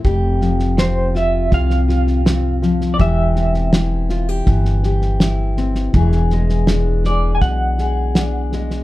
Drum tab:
SD |o-ooo-o-ooooo-oo|o-ooo-o-ooooo-oo|ooooo-o-o-o-o-oo|
BD |o-------o-------|o-------o-------|o-------o-------|